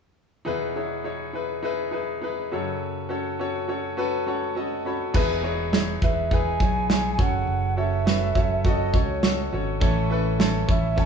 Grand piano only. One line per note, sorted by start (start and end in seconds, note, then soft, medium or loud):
0.45 2.47 E2 medium
0.45 2.47 B2 medium
0.45 0.74 D#4 medium
0.45 0.74 E4 medium
0.45 0.74 G#4 medium
0.45 0.75 B4 medium
0.76 1.03 D#4 medium
0.76 1.03 E4 medium
0.76 1.03 G#4 medium
0.76 1.04 C#5 medium
1.04 1.32 D#4 medium
1.04 1.32 E4 medium
1.04 1.33 G#4 medium
1.04 1.33 C#5 medium
1.33 1.61 D#4 medium
1.33 1.62 E4 medium
1.33 1.62 G#4 medium
1.33 1.63 B4 medium
1.63 1.90 D#4 medium
1.63 1.91 E4 medium
1.63 1.91 G#4 medium
1.63 1.92 B4 medium
1.91 2.20 D#4 medium
1.91 2.20 E4 medium
1.91 2.20 G#4 medium
1.91 2.21 B4 medium
2.22 2.49 D#4 medium
2.22 2.50 E4 medium
2.22 2.50 G#4 medium
2.22 2.50 B4 medium
2.52 4.82 F#2 medium
2.52 4.81 C#3 medium
2.52 3.07 C#4 medium
2.52 3.07 F#4 medium
2.52 3.07 A4 medium
2.52 3.07 C#5 medium
3.09 3.37 C#4 medium
3.09 3.37 F#4 medium
3.09 3.37 A4 medium
3.09 3.38 C#5 medium
3.39 3.67 C#4 medium
3.39 3.66 F#4 medium
3.39 3.67 A4 medium
3.39 3.68 C#5 medium
3.68 3.96 C#4 medium
3.68 3.96 F#4 medium
3.68 3.96 A4 medium
3.68 3.96 C#5 medium
3.97 4.25 C#4 medium
3.97 4.25 F#4 medium
3.97 4.25 A4 medium
3.97 4.26 B4 medium
4.26 4.54 C#4 medium
4.26 4.54 F#4 medium
4.26 4.55 A4 medium
4.26 4.55 C#5 medium
4.26 4.54 F#5 medium
4.55 4.83 C#4 medium
4.55 4.84 F#4 medium
4.55 4.84 A4 medium
4.55 4.84 D#5 medium
4.55 4.83 A5 medium
4.85 5.13 C#4 medium
4.85 5.13 F#4 medium
4.85 5.14 A4 medium
4.85 5.14 C#5 medium
4.85 5.13 B5 medium
5.14 5.98 B2 medium
5.14 5.41 D#4 medium
5.14 5.42 E4 medium
5.14 5.42 G#4 medium
5.14 5.42 B4 loud
5.43 5.71 D#4 medium
5.43 5.71 E4 medium
5.43 5.71 G#4 medium
5.43 5.71 C#5 medium
5.72 6.00 D#4 medium
5.72 6.00 E4 medium
5.72 6.01 G#4 medium
5.72 6.01 C#5 medium
6.02 6.29 D#4 medium
6.02 6.30 E4 medium
6.02 6.30 G#4 medium
6.02 6.30 B4 medium
6.31 6.59 D#4 medium
6.31 6.59 E4 medium
6.31 6.59 G#4 medium
6.31 6.60 B4 medium
6.61 6.88 D#4 medium
6.61 6.88 E4 medium
6.61 6.89 G#4 medium
6.61 6.89 C#5 medium
6.89 7.17 D#4 medium
6.89 7.17 E4 medium
6.89 7.18 G#4 medium
6.89 7.18 C#5 medium
7.18 8.02 C#3 soft
7.18 7.73 C#4 medium
7.18 7.73 F#4 medium
7.18 7.74 A4 medium
7.18 7.74 C#5 medium
7.77 8.04 C#4 medium
7.77 8.04 F#4 medium
7.77 8.05 A4 medium
7.77 8.05 C#5 medium
8.06 8.33 C#4 medium
8.06 8.34 F#4 medium
8.06 8.34 A4 medium
8.06 8.34 B4 medium
8.35 8.63 C#4 medium
8.35 8.63 F#4 medium
8.35 8.63 A4 medium
8.35 8.63 C#5 medium
8.65 8.92 C#4 medium
8.65 8.93 F#4 medium
8.65 8.92 A4 medium
8.65 8.93 D#5 medium
8.94 9.21 C#4 medium
8.94 9.21 F#4 medium
8.94 9.22 A4 medium
8.94 9.22 C#5 medium
9.23 9.50 C#4 medium
9.23 9.51 F#4 medium
9.23 9.51 A4 medium
9.23 9.51 D#5 medium
9.52 9.79 C#4 medium
9.52 9.80 F#4 medium
9.52 9.80 A4 medium
9.52 9.81 C#5 medium
9.80 10.65 A2 medium
9.80 10.65 E3 medium
9.80 10.08 C#4 medium
9.80 10.08 E4 medium
9.80 10.09 A4 medium
9.80 10.09 C#5 loud
10.10 10.37 C#4 medium
10.10 10.38 E4 medium
10.10 10.38 A4 medium
10.10 10.38 B4 medium
10.39 10.66 C#4 medium
10.39 10.66 E4 medium
10.39 10.66 A4 medium
10.39 10.67 C#5 medium
10.67 10.95 C#4 medium
10.67 10.95 E4 medium
10.67 10.96 A4 medium
10.67 10.96 C#5 medium
10.96 11.05 C#4 medium
10.96 11.05 E4 medium
10.96 11.05 A4 medium
10.96 11.05 C#5 medium